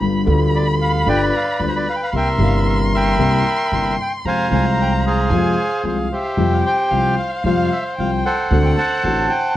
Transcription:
0.00 grand piano G1 G2 D3 G3 B3 F4, upright bass G1, violin B5
0.26 grand piano D2 D3 G3 B3 F4, upright bass D2
0.55 bandoneon D5
0.82 bandoneon F5
1.06 upright bass G1, grand piano G1 G2 D3 G3 B3 F4, bandoneon B4 D5 G5
1.37 bandoneon F5
1.59 upright bass D2, grand piano D2 D3 G3 B3 F4, bandoneon D5
1.67 bandoneon C5
1.76 bandoneon D5
1.90 bandoneon F5
1.96 bandoneon G5
2.03 bandoneon F5
2.13 upright bass C2, grand piano C2 C3 G3 A#3 E4, bandoneon A#4 E5, violin C6
2.17 bandoneon G5
2.38 upright bass G1, grand piano G1 G2 C3 G3 A#3 E4
2.43 bandoneon F5
2.69 bandoneon E5
2.94 bandoneon A#4 E5 G5
3.18 upright bass C2, grand piano C2 C3 G3 A#3 E4
3.72 upright bass G1, grand piano G1 G2 C3 G3 A#3 E4
4.01 bandoneon G5
4.25 upright bass F2, grand piano F2 C3 F3 G#3 F4, bandoneon C5 F5 G#5, violin A#5
4.51 upright bass C2, grand piano C2 C3 F3 G#3 F4, bandoneon G#5
4.81 bandoneon G5
5.06 bandoneon G#4 C5 F5
5.30 upright bass F2, grand piano F2 C3 F3 G#3 F4, violin G#5
5.84 upright bass C2, grand piano C2 C3 F3 G#3 F4, bandoneon C5, violin F5
6.12 bandoneon G4 C5 E5
6.37 upright bass F2, grand piano F2 C3 F3 G3 F4, violin G5
6.53 bandoneon F5
6.66 bandoneon C5 G5
6.91 upright bass C2, grand piano C2 C3 F3 G3 F4, violin F5
7.19 bandoneon F5
7.44 upright bass F2, grand piano F2 C3 F3 G3 F4, bandoneon C5 F5
7.72 bandoneon E5
7.97 upright bass C2, grand piano C2 C3 F3 G3 F4, bandoneon F5, violin G5
8.25 bandoneon A4 C5 F#5
8.51 upright bass D2, grand piano D2 D3 A3 C4 F#4, violin F#5
8.65 bandoneon G5
8.77 bandoneon C5 F#5 A5
9.03 upright bass A1, grand piano A1 A2 D3 A3 C4 F#4, violin A5
9.29 bandoneon G5

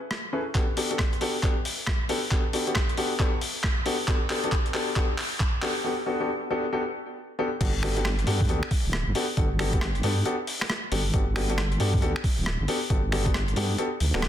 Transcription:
0.11 cross-stick
0.33 grand piano C#4 E4 G#4 A4 B4
0.55 grand piano B3 D4 F#4 G4 A4, kick, clap, closed hi-hat
0.77 grand piano B3 D4 F#4 G4 A4, open hi-hat
0.91 grand piano B3 D4 F#4 G4 A4, closed hi-hat
0.99 kick, cross-stick, clap, closed hi-hat
1.13 closed hi-hat
1.21 grand piano B3 D4 F#4 G4 A4, open hi-hat
1.43 grand piano B3 D4 F#4 G4 A4, kick, clap, closed hi-hat
1.65 open hi-hat
1.87 kick, cross-stick, clap
2.09 grand piano B3 D4 F#4 G4 A4, open hi-hat
2.31 grand piano B3 D4 F#4 G4 A4, kick, clap, closed hi-hat
2.53 grand piano B3 D4 F#4 G4 A4, open hi-hat
2.67 grand piano B3 D4 F#4 G4 A4, closed hi-hat
2.75 kick, cross-stick, clap, closed hi-hat
2.89 closed hi-hat
2.97 grand piano B3 D4 F#4 G4 A4, open hi-hat
3.19 grand piano B3 D4 F#4 G4 A4, kick, clap, closed hi-hat
3.41 open hi-hat
3.64 kick, cross-stick, clap
3.86 grand piano B3 D4 F#4 G4 A4, open hi-hat
4.08 grand piano B3 D4 F#4 G4 A4, kick, clap, closed hi-hat
4.30 grand piano B3 D4 F#4 G4 A4, clap, open hi-hat
4.44 grand piano B3 D4 F#4 G4 A4, closed hi-hat
4.52 kick, clap, closed hi-hat
4.66 closed hi-hat
4.74 grand piano B3 D4 F#4 G4 A4, clap, open hi-hat
4.96 grand piano B3 D4 F#4 G4 A4, kick, clap, closed hi-hat
5.18 clap, open hi-hat
5.40 kick, clap
5.62 grand piano B3 D4 F#4 G4 A4, clap, open hi-hat
5.84 grand piano B3 D4 F#4 G4 A4
6.06 grand piano B3 D4 F#4 G4 A4
6.20 grand piano B3 D4 F#4 G4 A4
6.50 grand piano B3 D4 F#4 G4 A4
6.73 grand piano B3 D4 F#4 G4 A4
7.39 grand piano B3 D4 F#4 G4 A4
7.61 wobble bass G1, grand piano B3 D4 F#4 G4 A4, kick, closed hi-hat, crash
7.83 grand piano B3 D4 F#4 G4 A4, finger snap, open hi-hat
7.97 grand piano B3 D4 F#4 G4 A4, closed hi-hat
8.05 finger snap, cross-stick, closed hi-hat
8.19 closed hi-hat
8.27 wobble bass G2, grand piano B3 D4 F#4 G4 A4, open hi-hat
8.41 kick
8.49 wobble bass D2, grand piano B3 D4 F#4 G4 A4, closed hi-hat
8.63 finger snap
8.71 kick, open hi-hat
8.85 wobble bass D1
8.93 cross-stick, closed hi-hat
9.07 wobble bass G1
9.15 grand piano B3 D4 F#4 G4 A4, open hi-hat
9.37 wobble bass G1, grand piano B3 D4 F#4 G4 A4, kick, closed hi-hat
9.59 grand piano B3 D4 F#4 G4 A4, finger snap, open hi-hat
9.73 grand piano B3 D4 F#4 G4 A4, kick, closed hi-hat
9.81 finger snap, cross-stick, closed hi-hat
9.95 closed hi-hat
10.03 wobble bass G2, grand piano B3 D4 F#4 G4 A4, open hi-hat
10.25 grand piano B3 D4 F#4 G4 A4, closed hi-hat
10.47 open hi-hat
10.61 finger snap, cross-stick
10.70 cross-stick, closed hi-hat
10.92 wobble bass G1, grand piano B3 D4 F#4 G4 A4, open hi-hat
11.14 wobble bass G1, grand piano B3 D4 F#4 G4 A4, kick, closed hi-hat
11.36 grand piano B3 D4 F#4 G4 A4, finger snap, open hi-hat
11.50 grand piano B3 D4 F#4 G4 A4, closed hi-hat
11.58 finger snap, cross-stick, closed hi-hat
11.72 closed hi-hat
11.80 wobble bass G2, grand piano B3 D4 F#4 G4 A4, open hi-hat
11.94 kick
12.02 wobble bass D2, grand piano B3 D4 F#4 G4 A4, closed hi-hat
12.16 finger snap
12.24 kick, open hi-hat
12.38 wobble bass D1
12.46 cross-stick
12.60 wobble bass G1
12.68 grand piano B3 D4 F#4 G4 A4, open hi-hat
12.90 wobble bass G1, grand piano B3 D4 F#4 G4 A4, kick, closed hi-hat
13.12 grand piano B3 D4 F#4 G4 A4, finger snap, open hi-hat
13.26 grand piano B3 D4 F#4 G4 A4, kick, closed hi-hat
13.34 finger snap, cross-stick, closed hi-hat
13.48 closed hi-hat
13.56 wobble bass G2, grand piano B3 D4 F#4 G4 A4, open hi-hat
13.78 grand piano B3 D4 F#4 G4 A4, closed hi-hat
14.00 wobble bass D2, open hi-hat
14.14 wobble bass D1, grand piano B3 D4 F#4 G4 A4, finger snap, cross-stick
14.22 cross-stick, closed hi-hat

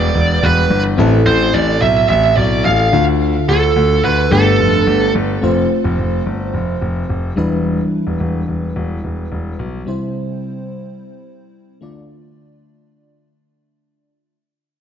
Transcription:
Already playing: fm electric piano E3 G3 B3 D4 E4 B4, lead electric guitar D5
0.15 grand piano E1
0.43 grand piano E1, lead electric guitar B4
0.70 grand piano G1
0.97 grand piano A1, fm electric piano A2 C4 E4 A4
1.26 grand piano A1, lead electric guitar C5
1.54 grand piano A1, lead electric guitar D5
1.82 grand piano B1, lead electric guitar E5
2.09 grand piano A1, lead electric guitar E5
2.37 grand piano B1, lead electric guitar D5
2.65 grand piano A1, lead electric guitar F5
2.92 grand piano D2, fm electric piano D3 D4 F4 A4
3.48 grand piano D2, lead electric guitar A4
3.76 grand piano D2
4.04 grand piano D2, lead electric guitar B4
4.30 grand piano G1, fm electric piano G2 A3 B3 D4 G4 B4, lead electric guitar A4
4.60 grand piano F1
4.87 grand piano G1
5.15 grand piano G1
5.42 grand piano F1, fm electric piano A3 C4 F4 C5
5.84 grand piano F1
5.98 grand piano F1
6.26 grand piano G1
6.54 grand piano F1
6.82 grand piano F1
7.09 grand piano F1
7.36 grand piano E1, fm electric piano E3 G3 D4 E4 B4
8.07 grand piano E1
8.20 grand piano E1
8.48 grand piano E1
8.76 grand piano E1
9.04 grand piano E1
9.32 grand piano E1
9.59 grand piano B1
9.86 fm electric piano C3 G3 C4 E4 C5
11.81 fm electric piano D3 A3 D4 F4 D5

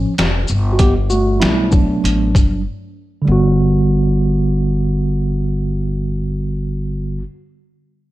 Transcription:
Already playing: tine electric piano F3 C#4
0.05 muted upright bass stroke
0.18 upright bass F1, snare, closed hi-hat
0.48 upright bass G1, shaker
0.73 tine electric piano F#4
0.79 tine electric piano B3 G4, kick, closed hi-hat
1.10 tine electric piano A3 F#4, shaker
1.40 upright bass B1, tine electric piano F#3 G3 A3 B3 E4, snare, closed hi-hat
1.71 tine electric piano F#3 D4, kick, shaker
2.04 upright bass A1, closed hi-hat
2.35 upright bass G1, kick, closed hi-hat, shaker
3.22 tine electric piano D3 G3
3.27 upright bass G1, tine electric piano B3
3.32 tine electric piano F#4

